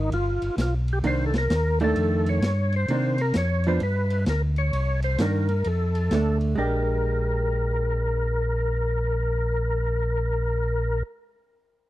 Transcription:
0.00 0.10 G#1 medium
0.00 0.12 D#3 medium
0.00 0.13 A#3 medium
0.11 0.39 G1 medium
0.11 0.55 F4 medium
0.11 ride medium
0.42 0.50 G1 soft
0.42 ride soft
0.57 1.02 B1 medium
0.57 snare medium
0.57 hi-hat pedal medium
0.57 ride medium
0.62 0.74 F4 medium
0.88 ride soft
0.93 0.99 G4 medium
1.03 1.48 C2 medium
1.03 1.31 D#3 medium
1.03 1.31 A#3 medium
1.03 1.32 D4 medium
1.03 1.25 C5 loud
1.03 ride medium
1.26 1.34 A4 medium
1.34 snare medium
1.34 ride soft
1.38 1.79 A#4 loud
1.50 1.94 D#2 medium
1.50 snare medium
1.50 hi-hat pedal medium
1.50 ride medium
1.80 2.39 D#3 medium
1.80 2.39 A3 medium
1.80 2.40 D4 medium
1.80 ride soft
1.84 2.29 A4 loud
1.96 2.41 F2 medium
1.96 ride medium
2.26 2.75 C#5 medium
2.26 ride soft
2.41 2.86 G2 medium
2.41 snare medium
2.41 hi-hat pedal soft
2.41 ride medium
2.72 3.21 C5 medium
2.72 ride soft
2.88 3.33 C3 medium
2.88 3.16 D#3 soft
2.88 3.16 A#3 soft
2.88 3.17 D4 soft
2.88 ride medium
3.18 3.36 A#4 medium
3.18 ride soft
3.34 3.79 F2 medium
3.34 3.67 C#5 medium
3.34 snare medium
3.34 hi-hat pedal medium
3.34 ride medium
3.64 3.80 F3 medium
3.64 3.80 B3 medium
3.64 ride soft
3.68 3.81 D4 medium
3.68 3.81 C5 medium
3.80 4.26 G2 medium
3.80 4.25 B4 medium
3.80 ride medium
4.10 ride soft
4.26 4.71 D2 medium
4.26 4.42 A#4 medium
4.26 snare medium
4.26 hi-hat pedal soft
4.26 ride medium
4.56 5.00 C#5 medium
4.56 ride soft
4.73 5.17 C2 medium
4.73 ride medium
5.02 5.20 C5 medium
5.02 ride soft
5.18 5.63 G2 medium
5.18 5.46 D#3 medium
5.18 5.47 A#3 medium
5.18 5.47 D4 medium
5.18 5.68 A#4 medium
5.18 snare medium
5.18 hi-hat pedal medium
5.18 ride medium
5.49 ride soft
5.64 6.10 F2 medium
5.64 6.38 A4 medium
5.64 ride medium
5.95 ride soft
6.11 6.56 D2 medium
6.11 6.55 A3 medium
6.11 6.56 D4 medium
6.11 snare medium
6.11 hi-hat pedal soft
6.11 ride medium
6.41 ride soft
6.56 11.02 A#1 medium
6.56 11.35 G#3 medium
6.56 11.38 D4 medium
6.56 11.38 G4 medium
6.56 11.03 A#4 medium

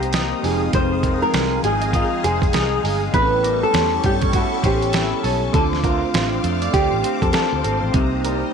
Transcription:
0.00 0.32 C2 loud
0.00 0.51 C3 medium
0.00 0.51 G3 medium
0.00 0.39 A#3 medium
0.00 0.51 A#3 medium
0.00 0.40 C4 medium
0.00 0.13 D#4 medium
0.00 0.41 D#4 medium
0.00 0.41 G4 medium
0.00 0.42 G4 medium
0.00 0.42 C5 medium
0.00 0.42 A#5 medium
0.00 3.10 D#6 medium
0.00 closed hi-hat soft
0.13 0.76 D#4 medium
0.13 snare loud
0.13 closed hi-hat medium
0.41 0.68 F1 medium
0.41 0.72 F2 medium
0.41 2.79 G#3 medium
0.41 2.80 C4 medium
0.41 2.80 D#4 medium
0.41 3.11 G#4 medium
0.41 0.61 G#4 medium
0.41 3.11 F5 medium
0.41 open hi-hat medium
0.46 2.81 G5 medium
0.73 1.22 F1 loud
0.73 3.12 F2 medium
0.73 1.22 C5 loud
0.73 kick loud
0.73 closed hi-hat medium
1.03 1.63 D#3 medium
1.03 1.21 A#4 medium
1.03 kick medium
1.03 closed hi-hat medium
1.22 1.64 A#4 loud
1.33 1.58 C2 medium
1.33 2.22 G#3 medium
1.33 1.51 C5 medium
1.33 snare loud
1.33 closed hi-hat medium
1.63 2.02 G#1 loud
1.63 3.21 D#3 medium
1.63 1.95 G#4 medium
1.63 closed hi-hat medium
1.81 2.10 D#5 medium
1.81 closed hi-hat soft
1.93 2.52 D#4 medium
1.93 2.25 F4 medium
1.93 kick medium
1.93 closed hi-hat medium
2.23 2.48 F1 loud
2.23 2.82 G#3 medium
2.23 2.80 G#4 medium
2.23 2.41 C5 medium
2.23 closed hi-hat medium
2.42 kick loud
2.42 closed hi-hat soft
2.53 2.78 C2 medium
2.53 3.21 D#4 medium
2.53 2.71 A#4 medium
2.53 snare loud
2.53 closed hi-hat medium
2.83 3.08 G1 medium
2.83 3.21 G#3 medium
2.83 3.01 G#4 loud
2.83 open hi-hat soft
3.12 3.62 A1 loud
3.12 5.53 A2 medium
3.12 4.60 G3 medium
3.12 4.61 B3 medium
3.12 3.22 C4 soft
3.12 5.52 A4 medium
3.12 3.59 B4 loud
3.12 5.52 A5 medium
3.12 5.52 C#6 medium
3.12 kick loud
3.12 closed hi-hat medium
3.16 4.62 E4 medium
3.21 4.63 C#4 medium
3.43 4.01 G3 medium
3.43 3.61 A#4 medium
3.43 closed hi-hat medium
3.63 4.05 A4 loud
3.73 3.98 E2 loud
3.73 4.61 C#4 medium
3.73 3.91 C5 medium
3.73 snare loud
3.73 closed hi-hat medium
4.03 4.43 G2 loud
4.03 5.61 G3 medium
4.03 4.13 G4 medium
4.03 kick medium
4.03 closed hi-hat medium
4.21 4.50 C#5 medium
4.21 kick medium
4.21 closed hi-hat soft
4.33 4.91 E4 medium
4.33 4.62 F#4 medium
4.33 kick medium
4.33 closed hi-hat loud
4.63 5.12 A1 loud
4.63 5.54 G3 soft
4.63 5.54 B3 soft
4.63 5.22 C#4 medium
4.63 5.54 C#4 soft
4.63 5.55 E4 medium
4.63 5.21 G4 medium
4.63 4.81 C5 medium
4.63 kick medium
4.63 closed hi-hat medium
4.83 closed hi-hat soft
4.92 5.61 E4 medium
4.92 snare loud
4.92 closed hi-hat medium
5.23 5.48 B1 medium
5.23 5.61 C#4 medium
5.23 5.41 A4 medium
5.23 open hi-hat soft
5.52 6.02 D2 loud
5.52 7.93 D3 medium
5.52 7.89 A3 medium
5.52 7.90 C4 medium
5.52 7.91 D4 medium
5.52 5.63 A4 loud
5.52 8.54 C5 medium
5.52 7.91 F5 medium
5.52 7.91 D6 medium
5.52 kick loud
5.52 closed hi-hat medium
5.57 7.92 F4 medium
5.73 snare soft
5.83 6.43 A3 medium
5.83 6.73 F4 loud
5.83 6.01 A#4 medium
5.83 kick medium
5.83 closed hi-hat medium
6.14 6.38 A1 medium
6.14 7.03 C4 medium
6.14 6.31 C5 medium
6.14 snare loud
6.14 closed hi-hat medium
6.44 6.68 F2 loud
6.44 8.01 A3 medium
6.44 closed hi-hat medium
6.62 6.91 D5 medium
6.62 closed hi-hat soft
6.73 6.88 D2 loud
6.73 7.32 F4 medium
6.73 7.21 G4 medium
6.73 kick medium
6.73 closed hi-hat medium
6.92 7.02 A1 medium
7.03 7.63 C4 medium
7.03 7.21 C5 medium
7.03 closed hi-hat medium
7.22 7.32 F2 medium
7.22 7.32 A4 medium
7.22 kick loud
7.22 closed hi-hat soft
7.33 8.01 F4 medium
7.33 7.78 A4 medium
7.33 7.51 A#4 medium
7.33 snare loud
7.33 closed hi-hat medium
7.52 7.62 D2 medium
7.63 7.79 G#1 medium
7.63 8.53 C4 medium
7.63 7.81 A4 medium
7.63 closed hi-hat medium
7.82 7.92 A1 medium
7.92 8.42 C2 loud
7.92 8.54 C3 medium
7.92 8.54 A#3 medium
7.92 8.54 C4 medium
7.92 8.54 D#4 medium
7.92 8.54 A#5 medium
7.92 8.54 D#6 loud
7.92 kick loud
7.92 closed hi-hat medium
7.97 8.54 G4 medium
8.23 8.54 G3 medium
8.23 8.41 A#4 medium
8.23 closed hi-hat medium

